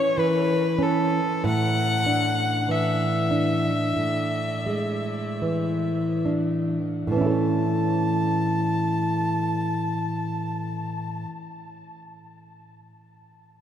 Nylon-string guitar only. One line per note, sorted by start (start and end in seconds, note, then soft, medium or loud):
0.00 0.54 C#4 medium
0.18 1.19 E3 medium
0.79 1.45 C#4 medium
1.44 3.92 A2 medium
2.06 3.05 D4 medium
2.68 3.70 E3 medium
3.31 4.38 D4 medium
3.96 7.05 A2 medium
4.66 5.91 G#3 medium
5.42 6.78 E3 medium
6.26 7.09 D4 medium
7.07 11.25 A2 medium
7.12 11.29 E3 medium
7.17 11.34 C#4 medium
7.21 7.30 E4 medium
7.26 11.43 A4 medium
7.30 11.48 C#5 medium